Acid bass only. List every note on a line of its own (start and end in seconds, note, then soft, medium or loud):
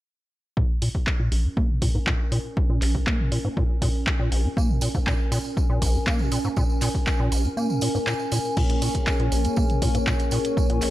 0.57 0.64 A#2 medium
0.82 0.89 A#2 medium
1.20 1.30 A#2 medium
1.32 1.46 A#1 medium
1.45 1.49 A#2 loud
1.57 1.71 A#3 medium
1.70 1.80 A#2 medium
1.82 1.89 A#2 medium
1.95 1.99 G#2 medium
2.07 2.14 A#2 medium
2.32 2.39 A#2 loud
2.70 2.80 A#2 medium
2.82 2.96 A#1 medium
2.95 2.99 A#2 loud
3.07 3.21 A#3 medium
3.20 3.30 A#2 medium
3.32 3.39 A#2 medium
3.45 3.49 G#2 medium
3.57 3.64 A#2 medium
3.82 3.89 A#2 medium
4.20 4.30 A#2 medium
4.32 4.46 A#1 medium
4.45 4.49 A#2 loud
4.57 4.71 A#3 medium
4.70 4.80 A#2 medium
4.82 4.89 A#2 medium
4.95 4.99 G#2 medium
5.07 5.14 A#2 medium
5.32 5.39 A#2 medium
5.70 5.80 A#2 medium
5.82 5.96 A#1 medium
5.95 5.99 A#2 loud
6.07 6.21 A#3 medium
6.20 6.30 A#2 medium
6.32 6.39 A#2 medium
6.45 6.49 G#2 medium
6.57 6.64 A#2 medium
6.82 6.89 A#2 loud
7.20 7.30 A#2 medium
7.32 7.46 A#1 medium
7.45 7.49 A#2 loud
7.57 7.71 A#3 medium
7.70 7.80 A#2 medium
7.82 7.89 A#2 medium
7.95 7.99 G#2 medium
8.07 8.14 A#2 medium
8.32 8.39 A#2 loud
8.57 8.64 A#2 medium
8.82 8.89 A#2 loud
9.20 9.30 A#2 medium
9.32 9.46 A#1 medium
9.45 9.49 A#2 loud
9.57 9.71 A#3 medium
9.70 9.80 A#2 medium
9.82 9.89 A#2 medium
9.95 9.99 G#2 medium
10.07 10.14 A#2 medium
10.32 10.39 A#2 loud
10.70 10.80 A#2 medium
10.82 10.90 A#1 medium